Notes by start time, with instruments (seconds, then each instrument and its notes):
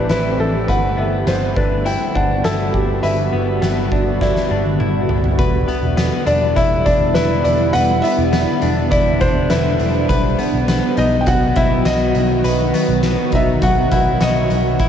Already playing: ambient pad E3 A3 C4 G4
0.09 picked electric bass A1, clean electric guitar E4, felt piano B4, snare, closed hi-hat
0.38 picked electric bass A1, felt piano A4
0.68 picked electric bass G1, ambient pad D3 G3 B3 F#4, clean electric guitar B4, felt piano F#5, kick, closed hi-hat
0.97 picked electric bass G1, clean electric guitar B3, felt piano E5
1.27 picked electric bass G1, clean electric guitar B3, felt piano C5, snare, closed hi-hat
1.56 picked electric bass G1, clean electric guitar D4, felt piano B4, kick
1.85 clean electric guitar E4, felt piano G5, closed hi-hat
2.15 picked electric bass G1, clean electric guitar D4, felt piano F#5, kick
2.44 picked electric bass G1, clean electric guitar E4, felt piano A4, snare, closed hi-hat
2.74 picked electric bass G1, felt piano G4, kick
3.03 picked electric bass G1, clean electric guitar B4, felt piano E5, closed hi-hat
3.32 picked electric bass G1, clean electric guitar B3
3.62 picked electric bass G1, clean electric guitar B3, snare, closed hi-hat
3.92 picked electric bass G1, clean electric guitar D4, kick
4.21 clean electric guitar E4, felt piano D5, kick, snare
4.36 snare
4.51 picked electric bass G1, clean electric guitar D4
4.66 high tom
4.80 picked electric bass G1, clean electric guitar E4, mid tom
5.09 picked electric bass G1, floor tom
5.24 floor tom
5.38 picked electric bass E1, ambient pad D3 G3 B3 E4, clean electric guitar B4, kick, closed hi-hat
5.68 clean electric guitar B3, closed hi-hat
5.83 picked electric bass E1
5.97 clean electric guitar B3, snare, closed hi-hat, tambourine
6.26 picked electric bass E1, clean electric guitar D4, felt piano D5, closed hi-hat
6.56 picked electric bass E1, clean electric guitar E4, felt piano E5, kick, closed hi-hat
6.86 picked electric bass E1, clean electric guitar D4, felt piano D5, kick, closed hi-hat
7.14 picked electric bass E1, clean electric guitar E4, felt piano B4, snare, closed hi-hat, tambourine
7.44 picked electric bass E1, felt piano D5, closed hi-hat
7.73 picked electric bass E1, ambient pad D4, clean electric guitar B4, felt piano F#5, closed hi-hat
8.02 clean electric guitar B3, felt piano E5, closed hi-hat
8.18 picked electric bass E1
8.33 clean electric guitar B3, snare, closed hi-hat, tambourine
8.62 picked electric bass E1, clean electric guitar D4, closed hi-hat
8.91 picked electric bass E1, clean electric guitar E4, felt piano D5, kick, closed hi-hat
9.21 picked electric bass E1, clean electric guitar D4, felt piano C5, kick, closed hi-hat
9.50 picked electric bass E1, clean electric guitar E4, felt piano B4, snare, closed hi-hat, tambourine
9.79 picked electric bass E1, closed hi-hat
10.09 picked electric bass B1, ambient pad D#3 F#3 F#4, clean electric guitar B4, kick, closed hi-hat
10.39 clean electric guitar B3, closed hi-hat
10.53 picked electric bass B1
10.68 clean electric guitar B3, snare, closed hi-hat, tambourine
10.97 picked electric bass B1, clean electric guitar D#4, felt piano D#5, closed hi-hat
11.21 felt piano G5
11.26 picked electric bass B1, clean electric guitar F#4, felt piano F#5, kick, closed hi-hat
11.56 picked electric bass B1, clean electric guitar E4, felt piano E5, kick, closed hi-hat
11.85 picked electric bass B1, clean electric guitar F#4, felt piano D#5, snare, closed hi-hat, tambourine
12.15 picked electric bass B1, closed hi-hat
12.44 picked electric bass B1, clean electric guitar B4, closed hi-hat
12.74 clean electric guitar B3, closed hi-hat
12.88 picked electric bass B1
13.03 clean electric guitar B3, snare, closed hi-hat, tambourine
13.32 picked electric bass B1, clean electric guitar D#4, felt piano E5, kick, closed hi-hat
13.62 picked electric bass B1, clean electric guitar F#4, felt piano F#5, kick, closed hi-hat
13.91 picked electric bass B1, clean electric guitar E4, felt piano F#5, kick, closed hi-hat
14.21 picked electric bass B1, clean electric guitar F#4, felt piano D#5, snare, closed hi-hat, tambourine
14.50 picked electric bass B1, closed hi-hat
14.79 picked electric bass A1, ambient pad E3 A3 C4 G4, clean electric guitar E4, kick, closed hi-hat